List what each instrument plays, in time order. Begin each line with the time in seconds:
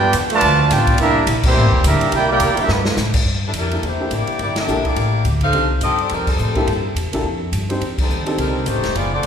Already playing: upright bass G2, trombone section B3 D4 G4, trumpet section F4 B4 D5 G5
0.13 upright bass E2, hi-hat pedal, ride
0.30 trombone section D3 F3 A3, trumpet section F4 B4 D5 A5, ride
0.41 upright bass D2, ride
0.71 upright bass A1, trombone section B3 D4 G4, trumpet section F4 B4 D5 G5, snare, hi-hat pedal, ride
0.87 kick, ride
0.98 upright bass C2, trombone section G3 A#3 E4, trumpet section D4 G4 A#4 E5, ride
1.16 muted upright bass stroke
1.26 upright bass A#1, hi-hat pedal, ride
1.43 trombone section E3 G3 C4, trumpet section A#3 E4 G4 C5, kick, crash
1.56 upright bass A1
1.66 upright bass G1
1.72 upright bass E1, kick
1.83 upright bass D2, trombone section G3 A#3 E4, trumpet section D4 G4 A#4 E5, hi-hat pedal, ride
2.00 muted upright bass stroke, ride
2.11 upright bass C2, trombone section A#3 E4 G4, trumpet section A#4 G5, ride
2.15 trumpet section E4 D5
2.28 trombone section A#3 E4 G4, trumpet section E4 A#4 D5 G5
2.40 upright bass E2, hi-hat pedal, ride
2.56 trombone section G3 A#3 E4, trumpet section D4 G4 A#4 E5, muted upright bass stroke, ride
2.68 upright bass G2, trombone section D3 F3 B3, trumpet section A3 D4 F4 B4, snare
2.85 snare
2.97 upright bass A2, snare, hi-hat pedal
3.14 kick, crash
3.25 upright bass G2
3.46 saxophone section G3 D4 E4 A4
3.53 upright bass F2, hi-hat pedal, ride
3.58 saxophone section G3 D4 E4 A#4
3.71 grand piano A#3 D4 E4 G4 A4, ride
3.83 upright bass E2, saxophone section A#3 E4 G4 C5, ride
4.00 grand piano A#3 D4 E4 G4 A4
4.10 upright bass A1, saxophone section A#3 D5, hi-hat pedal, ride
4.15 saxophone section E4 G4
4.27 muted upright bass stroke, ride
4.39 upright bass G1, saxophone section A#3 E4 G4 D5, ride
4.56 saxophone section G4 A#4 E5, snare, ride
4.60 saxophone section D4
4.67 upright bass A#1, grand piano A#3 D4 E4 G4 A4, hi-hat pedal
4.85 saxophone section A#3 E4 G4 D5, kick, ride
4.96 upright bass A1, ride
5.24 upright bass D2, hi-hat pedal, ride
5.41 saxophone section D#4 A4 C5 F5, kick, ride
5.53 upright bass C2, grand piano C4 D4 D#4 G4 A4, ride
5.81 upright bass G2, saxophone section C4 G4 A4 D#5, hi-hat pedal, ride
5.98 saxophone section C4 G4 A4 D5, ride
6.09 upright bass F2, saxophone section G3 D#4 A#4, ride
6.14 saxophone section C4
6.27 saxophone section G3 C4 D#4 A4, kick, crash
6.38 upright bass A2, hi-hat pedal
6.55 grand piano A#3 D4 E4 G4 A4, kick, ride
6.67 upright bass G2, ride
6.95 upright bass E2, hi-hat pedal, ride
7.05 upright bass C2
7.13 upright bass A#1, grand piano A#3 D4 E4 G4 A4, ride
7.23 upright bass F2
7.52 upright bass G2, hi-hat pedal, ride
7.69 grand piano C4 D4 D#4 G4 C5, ride
7.81 upright bass F2, ride
7.98 saxophone section G3 C4 D#4 A4, kick, crash
8.09 upright bass D#2, hi-hat pedal
8.25 grand piano C4 D4 D#4 G4 A4, ride
8.38 upright bass C2, saxophone section G3 C4 D#4 A#4, ride
8.66 upright bass A1, saxophone section A3 D#4 G4 C5, hi-hat pedal, ride
8.76 upright bass F1
8.83 upright bass D#1, snare, ride
8.95 upright bass F#1, saxophone section B3 F4 G#4 D5, ride
9.13 saxophone section C4 F#4 A4 D5
9.23 upright bass G#1, hi-hat pedal, ride